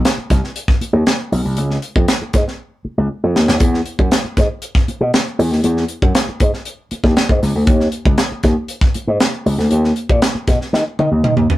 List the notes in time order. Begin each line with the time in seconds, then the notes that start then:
0.05 snare, closed hi-hat
0.18 muted slap bass stroke
0.30 C2, kick, snare, closed hi-hat
0.44 snare
0.56 closed hi-hat
0.68 kick, snare
0.81 muted slap bass stroke, closed hi-hat
0.93 D#2
1.07 snare, closed hi-hat
1.32 B1, open hi-hat
1.45 C2
1.57 C#2, closed hi-hat
1.71 snare
1.82 closed hi-hat
1.96 F2, kick
2.08 snare, closed hi-hat
2.22 muted slap bass stroke
2.33 G#2, kick, snare, closed hi-hat
2.48 snare
2.85 muted slap bass stroke
2.98 C#2
3.23 F2
3.35 D#2, snare
3.48 D#2, snare
3.60 E2, kick, closed hi-hat
3.74 snare
3.86 closed hi-hat
3.99 F#2, kick
4.11 snare, closed hi-hat
4.24 muted slap bass stroke
4.37 G#2, kick, snare, closed hi-hat
4.62 closed hi-hat
4.75 kick, snare
4.88 muted slap bass stroke, closed hi-hat
5.01 B2
5.14 snare, closed hi-hat
5.39 E2, open hi-hat
5.51 D#2, snare
5.64 E2, closed hi-hat
5.77 snare
5.88 closed hi-hat
6.02 F#2, kick
6.15 snare, closed hi-hat
6.29 muted slap bass stroke
6.40 G#2, kick, closed hi-hat
6.54 snare
6.65 closed hi-hat
6.91 muted slap bass stroke, closed hi-hat
7.04 D#2, kick, snare
7.17 snare, closed hi-hat
7.29 G#2, kick
7.43 C#2, snare, open hi-hat
7.55 D2
7.67 D#2, kick, closed hi-hat
7.80 snare
7.92 closed hi-hat
8.05 C#2, kick
8.18 snare, closed hi-hat
8.32 muted slap bass stroke
8.43 D#2, kick, snare, closed hi-hat
8.68 closed hi-hat
8.81 kick, snare
8.94 muted slap bass stroke, closed hi-hat
9.07 G#2
9.20 snare, closed hi-hat
9.46 C#2, open hi-hat
9.58 D2, snare
9.71 D#2, closed hi-hat
9.84 snare
9.96 closed hi-hat
10.09 A#2, kick
10.22 snare, closed hi-hat
10.35 muted slap bass stroke
10.47 B2, kick, snare, closed hi-hat
10.61 snare
10.73 D#3, snare
10.99 D#3, high tom
11.11 D#2
11.24 D#3, mid tom
11.36 D#2, mid tom
11.50 floor tom